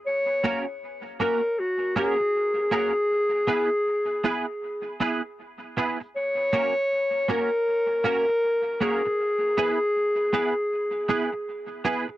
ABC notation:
X:1
M:4/4
L:1/8
Q:"Swing 16ths" 1/4=79
K:F#mix
V:1 name="Clarinet"
c2 z A F G2 G- | G4- G z3 | c3 A2 A2 G- | G6- G z |]
V:2 name="Clean electric guitar"
z [A,CFA] z [A,CFA] z [A,CFA] z [A,CFA] | z [B,EGB] z [B,EGB] z [B,EGB] z [B,EGB] | z [A,CFA] z [A,CFA] z [A,CFA] z [A,CFA] | z [B,EGB] z [B,EGB] z [B,EGB] z [B,EGB] |]